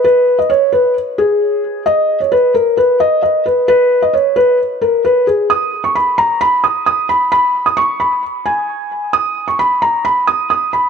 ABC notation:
X:1
M:4/4
L:1/16
Q:1/4=132
K:B
V:1 name="Felt piano"
B3 d c2 B2 z2 G6 | d3 c B2 A2 B2 d2 d2 B2 | B3 d c2 B2 z2 A2 B2 G2 | d'3 c' b2 a2 b2 d'2 d'2 b2 |
b3 d' c'2 b2 z2 g6 | d'3 c' b2 a2 b2 d'2 d'2 b2 |]